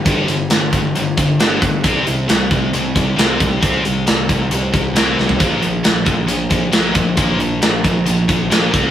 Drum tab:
HH |x-x-x-x-x-x-x-x-|x-x-x-x-x-x-x-x-|x-x-x-x-x-x-x---|x-x-x-x-x-x-x-x-|
SD |----o-------o---|----o-------o---|----o-------o-o-|----o-------o---|
FT |----------------|----------------|---------------o|----------------|
BD |o-----o---o---o-|o-----o---o---o-|o-----o---o-----|o-----o---o---o-|

HH |x-x-x-x-x-x-x-x-|
SD |----o-------o---|
FT |----------------|
BD |o-----o---o---o-|